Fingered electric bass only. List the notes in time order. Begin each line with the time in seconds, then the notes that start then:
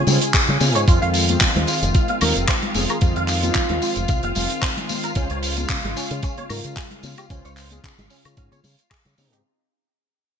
0.07 C#3
0.48 C#3
0.61 C#3
0.75 G#2
0.88 F2
1.02 F2
1.56 D#2
1.82 F1
2.22 D#2
2.36 F1
2.75 F1
3.02 F2
3.16 F2
3.70 D#2
3.96 F1
4.09 C2
4.23 F1
4.36 F1
5.16 C#2
5.30 C#2
5.84 G#1
6.11 C#3
6.50 G#2
6.64 C#3
7.03 C#3
7.30 C#2
7.45 C#2
7.99 G#1
8.25 C#3
8.37 G#2
8.52 C#3
8.64 C#3
9.06 C#3
9.18 C#3
9.33 G#2